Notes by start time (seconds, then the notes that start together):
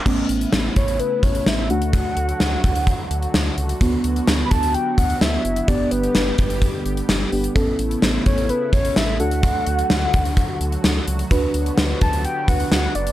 0.06 A1 C#3 A3 B3 C#4 E4, kick, crash
0.29 A1, closed hi-hat
0.41 closed hi-hat
0.53 A1, snare
0.76 A1 C#5, kick, closed hi-hat
0.88 closed hi-hat
0.99 B4, closed hi-hat
1.23 A1 C#5, kick, closed hi-hat
1.35 closed hi-hat
1.46 A1 E5, snare
1.70 D2 D3 F#3 A3 D4 F#4 F#5, closed hi-hat
1.82 closed hi-hat
1.93 kick, closed hi-hat
2.17 D2, closed hi-hat
2.29 closed hi-hat
2.40 D2, snare
2.64 D2, kick, closed hi-hat
2.75 closed hi-hat
2.87 kick, closed hi-hat
3.11 D2, closed hi-hat
3.23 closed hi-hat
3.34 D2, snare
3.57 C#2, closed hi-hat
3.69 closed hi-hat
3.81 D2 F#3 B3 D4 F#4, kick, closed hi-hat
4.04 D2, closed hi-hat
4.16 closed hi-hat
4.27 D2, snare
4.45 B5
4.51 D2 A5, kick, closed hi-hat
4.63 closed hi-hat
4.74 G5, closed hi-hat
4.98 D2 F#5, kick, closed hi-hat
5.10 closed hi-hat
5.21 D2 E5, snare
5.45 F#1, closed hi-hat
5.56 closed hi-hat
5.68 G1 D3 G3 B3 D4 G4 D5, kick, closed hi-hat
5.91 G1 B4, closed hi-hat
6.03 closed hi-hat
6.15 G1, snare
6.38 G1, kick, closed hi-hat
6.50 closed hi-hat
6.62 kick, closed hi-hat
6.85 G1, closed hi-hat
6.97 closed hi-hat
7.09 G1, snare
7.32 G1 B3 D4 G4, open hi-hat
7.44 closed hi-hat
7.55 A1 C#3 A3 B3 C#4 E4 A4, kick, closed hi-hat
7.79 A1, closed hi-hat
7.91 closed hi-hat
8.02 A1, snare
8.26 A1 C#5, kick, closed hi-hat
8.38 closed hi-hat
8.49 B4, closed hi-hat
8.73 A1 C#5, kick, closed hi-hat
8.85 closed hi-hat
8.96 A1 E5, snare
9.20 D2 D3 F#3 D4 F#4 A4 F#5, closed hi-hat
9.31 closed hi-hat
9.43 kick, closed hi-hat
9.67 D2, closed hi-hat
9.79 closed hi-hat
9.90 D2, snare
10.14 D2, kick, closed hi-hat
10.25 closed hi-hat
10.37 kick, closed hi-hat
10.61 D2, closed hi-hat
10.72 closed hi-hat
10.84 D2, snare
11.07 C#2, closed hi-hat
11.19 closed hi-hat
11.31 D2 D3 B3 D4 F#4 B4, kick, closed hi-hat
11.54 D2, closed hi-hat
11.66 closed hi-hat
11.78 D2, snare
12.01 D2 A5, kick, closed hi-hat
12.13 closed hi-hat
12.25 G5, closed hi-hat
12.48 D2 D4 F#4 B4 F#5, kick, closed hi-hat
12.60 closed hi-hat
12.72 D2 F#5, snare
12.95 F#1 D5, closed hi-hat
13.07 closed hi-hat